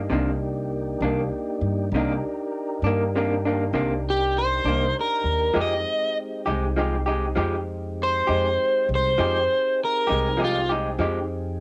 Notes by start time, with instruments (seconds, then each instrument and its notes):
Already playing: tonewheel organ A#3 D4 D#4 G4
0.10 upright bass C2, clean electric guitar C3 D#3 A#3 D4
1.01 upright bass C2, clean electric guitar A#3 D4
1.05 clean electric guitar D#3
1.61 upright bass G2
1.92 upright bass C2, clean electric guitar C3, tonewheel organ D4 D#4 G4 A#4
1.96 clean electric guitar D#3 A#3 D4
2.82 upright bass G2, clean electric guitar D4
2.86 clean electric guitar D#3 A#3
3.16 clean electric guitar C3 D#3 A#3 D4
3.45 clean electric guitar D#3 A#3 D4
3.73 upright bass C2, clean electric guitar C3 D#3 A#3 D4
4.10 overdriven electric guitar G4
4.38 overdriven electric guitar C5
4.65 upright bass C2, clean electric guitar A#3 D4
4.69 clean electric guitar D#3
5.01 overdriven electric guitar A#4
5.24 upright bass D#2
5.54 upright bass F2, clean electric guitar F3 G#3 D#4 G4, tonewheel organ G#3 C4 D#4 G4
5.61 overdriven electric guitar D#5
6.46 upright bass C2, clean electric guitar G#3 D#4 G4
6.77 clean electric guitar F3 G#3 D#4 G4
7.06 clean electric guitar G#3 D#4 G4
7.36 upright bass F2, clean electric guitar F3 G#3 D#4 G4
8.03 overdriven electric guitar C5
8.27 upright bass F2, clean electric guitar G#3 D#4 G4
8.89 upright bass C2
8.95 overdriven electric guitar C5
9.18 upright bass F2, clean electric guitar F3 G#3 D#4 G4, tonewheel organ C4 D#4 G4 G#4
9.85 overdriven electric guitar A#4
10.07 upright bass C2, clean electric guitar G#3 D#4 G4
10.37 clean electric guitar F3 G#3 D#4 G4
10.44 overdriven electric guitar F4
10.69 clean electric guitar G#3 D#4 G4
10.99 upright bass F2, clean electric guitar F3 G#3 D#4 G4